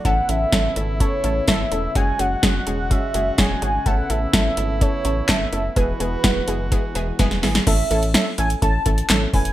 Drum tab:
CC |----------------|----------------|----------------|----------------|
HH |x-x-x-x-x-x-x-x-|x-x-x-x-x-x-x-x-|x-x-x-x-x-x-x-x-|x-x-x-x-x-x-x-o-|
CP |----------------|----------------|------------x---|----------------|
SD |----o-------o---|----o-------o---|----o-------o---|----o-------oooo|
BD |o---o---o---o---|o---o---o---o---|o---o---o---o---|o---o---o---o---|

CC |x---------------|
HH |x-xxx-xxx-xxx-ox|
CP |------------x---|
SD |----o-------o---|
BD |o-------o-o---o-|